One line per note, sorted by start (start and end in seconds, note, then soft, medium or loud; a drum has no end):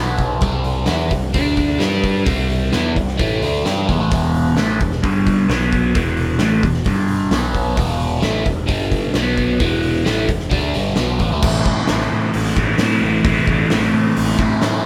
0.00 0.39 B1 loud
0.00 0.40 B2 medium
0.00 0.41 F#3 medium
0.00 0.41 B3 medium
0.17 kick medium
0.17 open hi-hat medium
0.41 0.85 C2 loud
0.41 0.85 C3 medium
0.41 0.86 G3 medium
0.41 0.87 C4 medium
0.41 kick loud
0.41 open hi-hat medium
0.64 open hi-hat soft
0.86 1.10 E2 medium
0.86 1.10 E3 medium
0.86 1.10 B3 medium
0.86 1.11 E4 medium
0.86 snare loud
0.86 open hi-hat medium
1.10 1.33 C2 medium
1.10 1.32 C3 medium
1.10 1.33 G3 medium
1.10 kick medium
1.10 open hi-hat medium
1.32 1.78 D2 medium
1.32 1.79 D3 medium
1.32 1.78 A3 medium
1.32 1.79 D4 loud
1.32 kick loud
1.32 open hi-hat medium
1.57 kick medium
1.57 open hi-hat medium
1.78 2.23 G2 loud
1.78 2.24 G3 medium
1.78 2.25 D4 loud
1.78 2.26 G4 loud
1.78 snare loud
1.78 open hi-hat medium
2.04 kick medium
2.04 open hi-hat medium
2.24 2.70 C2 loud
2.24 2.71 C3 medium
2.24 2.72 G3 medium
2.24 2.72 C4 medium
2.24 kick loud
2.24 open hi-hat medium
2.50 open hi-hat medium
2.72 2.95 E2 medium
2.72 2.95 E3 medium
2.72 2.96 B3 medium
2.72 2.96 E4 medium
2.72 snare loud
2.72 open hi-hat medium
2.96 3.18 C2 medium
2.96 3.15 C3 medium
2.96 3.15 G3 medium
2.96 kick medium
2.96 open hi-hat medium
3.08 snare soft
3.17 3.41 A1 medium
3.17 3.41 A2 loud
3.17 3.42 E3 medium
3.17 3.42 A3 loud
3.17 kick loud
3.17 open hi-hat medium
3.42 3.64 D2 medium
3.42 3.65 D3 medium
3.42 3.64 A3 loud
3.42 3.64 D4 medium
3.42 open hi-hat medium
3.64 3.87 G2 loud
3.64 3.87 G3 medium
3.64 3.88 D4 medium
3.64 3.88 G4 medium
3.64 snare loud
3.64 open hi-hat medium
3.87 3.96 E2 loud
3.87 3.98 E3 medium
3.87 4.00 B3 medium
3.87 kick medium
3.87 open hi-hat medium
3.97 4.09 A1 medium
3.97 4.10 A2 medium
3.97 4.11 E3 medium
4.11 4.54 E1 medium
4.11 4.57 E2 medium
4.11 4.57 B2 medium
4.11 4.56 E3 medium
4.11 kick loud
4.11 open hi-hat medium
4.34 open hi-hat medium
4.56 4.78 A1 medium
4.56 4.80 A2 medium
4.56 4.80 E3 medium
4.56 4.80 A3 loud
4.56 snare loud
4.56 open hi-hat medium
4.80 5.02 E1 medium
4.80 4.99 E2 medium
4.80 4.99 B2 medium
4.80 kick medium
4.80 open hi-hat medium
4.92 snare soft
5.02 5.46 G1 medium
5.02 5.48 G2 medium
5.02 5.48 D3 loud
5.02 5.49 G3 loud
5.02 kick loud
5.02 open hi-hat medium
5.26 kick medium
5.26 open hi-hat medium
5.48 5.92 B1 loud
5.48 5.94 B2 medium
5.48 5.95 F#3 medium
5.48 5.95 B3 medium
5.48 snare loud
5.48 open hi-hat medium
5.72 kick medium
5.72 open hi-hat medium
5.94 6.38 E1 loud
5.94 6.40 E2 medium
5.94 6.40 B2 medium
5.94 6.40 E3 medium
5.94 kick loud
5.94 open hi-hat medium
6.17 open hi-hat medium
6.39 6.63 A1 medium
6.39 6.63 A2 medium
6.39 6.63 E3 medium
6.39 6.64 A3 medium
6.39 snare loud
6.39 open hi-hat medium
6.63 6.85 E1 medium
6.63 6.83 E2 medium
6.63 6.83 B2 medium
6.63 kick medium
6.63 open hi-hat medium
6.74 snare soft
6.84 7.29 G1 medium
6.84 7.31 G2 medium
6.84 7.32 D3 loud
6.84 7.32 G3 loud
6.84 kick loud
6.84 open hi-hat medium
7.08 open hi-hat medium
7.31 7.74 B1 loud
7.31 7.75 B2 medium
7.31 7.77 F#3 medium
7.31 7.78 B3 medium
7.31 snare loud
7.31 open hi-hat medium
7.55 kick medium
7.55 open hi-hat medium
7.75 8.21 E1 loud
7.75 8.22 E2 medium
7.75 8.20 B2 loud
7.75 8.20 E3 medium
7.75 kick loud
7.75 open hi-hat medium
8.00 open hi-hat medium
8.21 8.44 A1 loud
8.21 8.44 A2 medium
8.21 8.45 E3 medium
8.21 8.46 A3 medium
8.21 snare loud
8.21 open hi-hat medium
8.44 8.68 E1 medium
8.44 8.64 E2 medium
8.44 8.64 B2 medium
8.44 kick medium
8.44 open hi-hat soft
8.67 9.12 G1 loud
8.67 9.13 G2 medium
8.67 9.13 D3 loud
8.67 9.14 G3 loud
8.67 kick loud
8.67 open hi-hat medium
8.92 kick medium
8.92 open hi-hat medium
9.13 9.57 B1 loud
9.13 9.59 B2 medium
9.13 9.60 F#3 medium
9.13 9.60 B3 medium
9.13 snare loud
9.13 open hi-hat medium
9.37 kick medium
9.37 open hi-hat medium
9.59 10.03 E1 loud
9.59 10.05 E2 medium
9.59 10.04 B2 medium
9.59 10.05 E3 loud
9.59 kick loud
9.59 open hi-hat medium
9.83 open hi-hat medium
10.05 10.27 A1 medium
10.05 10.28 A2 medium
10.05 10.28 E3 medium
10.05 10.29 A3 medium
10.05 snare loud
10.05 open hi-hat medium
10.28 10.50 E1 medium
10.28 10.47 E2 medium
10.28 10.47 B2 medium
10.28 kick medium
10.28 open hi-hat medium
10.40 snare soft
10.50 10.73 D2 loud
10.50 10.73 D3 loud
10.50 10.74 A3 medium
10.50 10.74 D4 medium
10.50 kick loud
10.50 open hi-hat medium
10.74 10.96 G1 loud
10.74 10.97 G2 medium
10.74 10.95 D3 loud
10.74 10.96 G3 loud
10.74 open hi-hat medium
10.95 11.19 B1 loud
10.95 11.19 B2 medium
10.95 11.19 F#3 loud
10.95 11.19 B3 medium
10.95 snare loud
10.95 open hi-hat medium
11.19 11.31 A1 medium
11.19 11.30 A2 medium
11.19 11.31 E3 loud
11.19 kick medium
11.19 open hi-hat medium
11.32 11.42 D2 loud
11.32 11.42 D3 medium
11.32 11.43 A3 medium
11.42 11.61 A1 loud
11.42 12.79 A2 medium
11.42 11.87 E3 medium
11.42 11.68 A3 medium
11.42 11.67 C4 medium
11.42 11.65 E4 medium
11.42 kick loud
11.42 crash loud
11.65 11.83 A1 medium
11.65 11.89 A3 medium
11.65 11.90 C4 medium
11.65 11.91 E4 medium
11.65 kick medium
11.87 12.06 A1 medium
11.87 12.79 E3 medium
11.87 12.59 A3 medium
11.87 12.58 C4 medium
11.87 snare loud
11.87 open hi-hat medium
11.92 12.56 E4 medium
12.00 snare soft
12.12 12.30 A2 medium
12.34 12.52 A1 loud
12.34 open hi-hat medium
12.56 12.74 A1 medium
12.56 12.80 A3 medium
12.56 12.81 C4 medium
12.56 12.83 E4 medium
12.56 kick loud
12.56 snare soft
12.78 12.97 A2 loud
12.78 13.24 A2 medium
12.78 13.26 E3 medium
12.78 13.05 A3 loud
12.78 13.04 C4 medium
12.78 snare loud
12.78 open hi-hat medium
12.83 13.02 E4 medium
13.02 13.20 A1 medium
13.02 13.26 A3 medium
13.02 13.28 C4 medium
13.02 13.28 E4 medium
13.24 13.42 A1 loud
13.24 14.61 A2 medium
13.24 13.71 E3 medium
13.24 13.51 A3 medium
13.24 kick loud
13.24 open hi-hat medium
13.28 13.50 C4 medium
13.28 13.48 E4 medium
13.47 13.65 A1 medium
13.47 13.74 C4 medium
13.47 13.75 E4 medium
13.47 kick medium
13.51 13.72 A3 medium
13.70 13.89 A1 medium
13.70 14.62 E3 medium
13.70 14.42 A3 medium
13.70 14.40 C4 medium
13.70 snare loud
13.70 open hi-hat medium
13.75 14.38 E4 medium
13.83 snare soft
13.94 14.11 A2 loud
14.17 14.34 A1 medium
14.17 open hi-hat medium
14.39 14.56 A1 medium
14.39 14.63 A3 medium
14.39 14.64 C4 medium
14.39 14.65 E4 medium
14.39 kick medium
14.39 snare soft
14.61 14.86 A2 medium
14.61 14.80 A2 loud
14.61 14.86 E3 loud
14.61 14.86 A3 medium
14.61 14.86 C4 medium
14.61 snare loud
14.61 open hi-hat medium
14.66 14.83 E4 loud